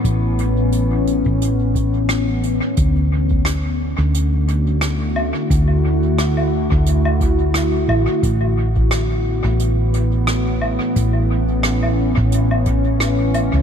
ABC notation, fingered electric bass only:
X:1
M:4/4
L:1/16
Q:"Swing 16ths" 1/4=88
K:Dlyd
V:1 name="Fingered electric bass" clef=bass
A,,,6- A,,, A,,,8 z | D,,6- D,, D,,8 z | D,,6- D,, D,,6- D,, A,,, z | A,,,6- A,,, A,,,8 z |
A,,,6- A,,, A,,,8 C,, |]